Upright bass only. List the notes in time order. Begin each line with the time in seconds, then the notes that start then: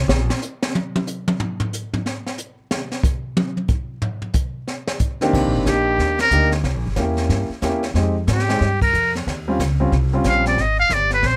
0.08 A#1
5.33 C2
5.43 A#1
5.54 G1
5.66 A#1
5.99 D#2
6.31 D2
6.63 C2
6.75 A#1
6.86 G1
6.97 E2
7.29 G2
7.49 muted upright bass stroke
7.62 E2
7.94 F2
8.27 G#2
8.61 G2
8.93 F2
9.26 D#2
9.59 C#2
9.91 C2
10.24 A#1
10.57 G#1
10.89 G1
11.22 A#1